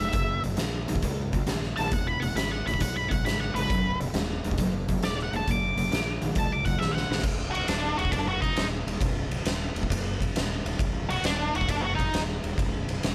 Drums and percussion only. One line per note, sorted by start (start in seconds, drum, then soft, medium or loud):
0.13 kick loud
0.13 closed hi-hat medium
0.44 closed hi-hat soft
0.57 snare medium
0.57 closed hi-hat medium
0.88 closed hi-hat medium
0.96 kick medium
1.02 kick medium
1.02 closed hi-hat medium
1.33 kick medium
1.33 closed hi-hat soft
1.47 snare loud
1.47 closed hi-hat medium
1.63 snare soft
1.77 closed hi-hat soft
1.92 kick loud
1.92 closed hi-hat medium
2.22 closed hi-hat medium
2.37 snare loud
2.37 closed hi-hat medium
2.67 closed hi-hat medium
2.74 kick medium
2.80 kick medium
2.80 closed hi-hat medium
3.11 kick medium
3.11 closed hi-hat medium
3.26 snare medium
3.26 closed hi-hat medium
3.56 closed hi-hat medium
3.70 kick loud
3.70 closed hi-hat medium
4.01 closed hi-hat medium
4.14 snare loud
4.14 closed hi-hat medium
4.44 closed hi-hat soft
4.51 kick medium
4.58 kick loud
4.58 closed hi-hat medium
4.88 kick medium
4.88 closed hi-hat medium
5.03 snare loud
5.03 closed hi-hat medium
5.19 snare soft
5.33 closed hi-hat soft
5.48 kick medium
5.48 closed hi-hat medium
5.78 closed hi-hat medium
5.92 snare loud
5.92 closed hi-hat medium
6.22 closed hi-hat medium
6.35 kick loud
6.35 closed hi-hat medium
6.65 kick medium
6.65 closed hi-hat medium
6.81 snare medium
6.97 snare medium
7.12 snare medium
7.18 snare medium
7.23 kick loud
7.23 crash loud
7.55 ride medium
7.68 snare loud
7.68 ride medium
7.99 ride medium
8.05 kick medium
8.12 kick medium
8.12 ride medium
8.42 kick medium
8.42 ride medium
8.56 snare loud
8.56 ride medium
8.88 ride medium
9.01 kick medium
9.01 ride medium
9.31 ride medium
9.45 snare medium
9.45 ride medium
9.76 ride medium
9.83 kick medium
9.90 kick medium
9.90 ride loud
10.21 kick medium
10.21 ride medium
10.36 snare loud
10.36 ride medium
10.66 ride medium
10.79 kick loud
10.79 ride medium
11.10 ride medium
11.24 snare loud
11.24 ride medium
11.55 ride medium
11.61 kick medium
11.69 kick medium
11.69 ride medium
11.99 kick medium
11.99 ride medium
12.14 snare loud
12.14 ride medium
12.44 ride medium
12.58 kick loud
12.58 ride medium
12.89 ride medium
13.03 snare loud
13.03 ride medium